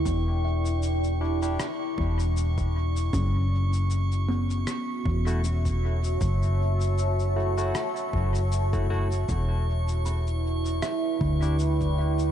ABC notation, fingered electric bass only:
X:1
M:4/4
L:1/8
Q:"Swing 16ths" 1/4=78
K:Edor
V:1 name="Fingered electric bass" clef=bass
E,,,4 z E,,,3 | F,,,4 z E,,,3 | F,,,4 z F,,,3 | E,,,4 z D,,3 |]